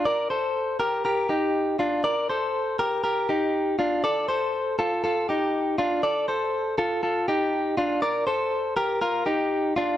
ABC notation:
X:1
M:4/4
L:1/8
Q:1/4=120
K:Fmix
V:1 name="Clean electric guitar"
[Bd] [Ac]2 [GB] [GB] [EG]2 [DF] | [Bd] [Ac]2 [GB] [GB] [EG]2 [DF] | [Ad] [Ac]2 [FA] [FA] [EG]2 [DF] | [Ad] [Ac]2 [FA] [FA] [EG]2 [DF] |
[Bd] [Ac]2 [GB] [FB] [EG]2 [DF] |]